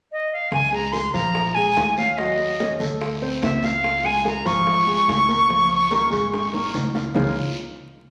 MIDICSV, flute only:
0, 0, Header, 1, 2, 480
1, 0, Start_track
1, 0, Key_signature, -5, "major"
1, 0, Tempo, 414365
1, 602, Time_signature, 4, 2, 24, 8
1, 9384, End_track
2, 0, Start_track
2, 0, Title_t, "Flute"
2, 0, Program_c, 0, 73
2, 137, Note_on_c, 0, 75, 75
2, 353, Note_off_c, 0, 75, 0
2, 380, Note_on_c, 0, 77, 74
2, 595, Note_off_c, 0, 77, 0
2, 615, Note_on_c, 0, 80, 90
2, 833, Note_off_c, 0, 80, 0
2, 853, Note_on_c, 0, 82, 81
2, 1066, Note_on_c, 0, 84, 89
2, 1084, Note_off_c, 0, 82, 0
2, 1301, Note_off_c, 0, 84, 0
2, 1308, Note_on_c, 0, 82, 99
2, 1788, Note_on_c, 0, 80, 88
2, 1805, Note_off_c, 0, 82, 0
2, 2276, Note_off_c, 0, 80, 0
2, 2282, Note_on_c, 0, 77, 74
2, 2517, Note_on_c, 0, 75, 70
2, 2534, Note_off_c, 0, 77, 0
2, 3242, Note_off_c, 0, 75, 0
2, 3970, Note_on_c, 0, 76, 75
2, 4225, Note_on_c, 0, 77, 85
2, 4243, Note_off_c, 0, 76, 0
2, 4693, Note_on_c, 0, 80, 84
2, 4711, Note_off_c, 0, 77, 0
2, 4930, Note_off_c, 0, 80, 0
2, 4948, Note_on_c, 0, 82, 91
2, 5168, Note_on_c, 0, 85, 100
2, 5186, Note_off_c, 0, 82, 0
2, 7806, Note_off_c, 0, 85, 0
2, 9384, End_track
0, 0, End_of_file